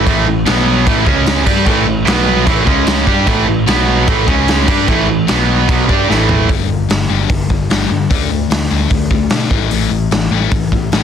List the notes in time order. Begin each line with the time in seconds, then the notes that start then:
0.06 A1 A2 E3 A3, kick, crash
0.26 A1 A2 E3
0.45 B1 B2 F#3 B3, snare, crash
0.86 A1 A2 E3 A3, kick, crash
1.05 C#2 C#3 G#3 C#4, kick
1.26 snare, crash
1.46 G2 G3 D4 G4, kick, crash
1.66 A1 A2 E3 A3, kick, crash
1.87 A1 A2 E3
2.06 B1 B2 F#3 B3, snare, crash
2.47 A1 A2 E3 A3, kick, crash
2.66 C#2 C#3 G#3 C#4, kick
2.87 snare, crash
3.07 G2 G3 D4 G4, kick
3.27 A1 A2 E3 A3, kick, crash
3.47 A1 A2 E3
3.66 B1 B2 F#3 B3, snare, crash
4.07 A1 A2 E3 A3, kick, crash
4.27 C#2 C#3 G#3 C#4, kick
4.48 snare, crash
4.67 G2 G3 D4 G4, kick, crash
4.87 A1 A2 E3 A3, kick, crash
5.08 A1 A2 E3
5.27 B1 B2 F#3 B3, snare, crash
5.67 B1 B2 F#3 B3, kick, crash
5.87 G2 G3 D4 G4, kick
6.07 A1 A2 E3 A3, snare
6.29 floor tom
6.48 G1 G2 D3 G3, kick, open hi-hat
6.68 G1 G2 D3
6.89 G1 G2 D3, snare, open hi-hat
7.09 G1 G2 D3 G3
7.30 G1 G2 D3, kick, open hi-hat
7.50 G1 G2 D3, kick
7.70 G1 G2 D3 G3, snare, open hi-hat
7.90 G2 D3
8.10 D2 D3 A3 D4, kick, open hi-hat
8.30 D2 D3 A3
8.50 D2 D3 A3, snare, open hi-hat
8.70 D2 D3 A3 D4
8.90 D2 D3 A3, kick, open hi-hat
9.10 D2 D3 A3, kick
9.30 B2 D3 A3 D4, snare, open hi-hat
9.51 A1 A2 E3 A3, kick
9.71 A1 A2 E3 A3, open hi-hat
9.91 A1 A2 E3
10.11 A1 A2 E3, snare, open hi-hat
10.31 A1 A2 E3 A3
10.51 A1 A2 E3, kick, open hi-hat
10.72 A1 A2 E3, kick
10.92 A1 A2 E3 A3, snare, open hi-hat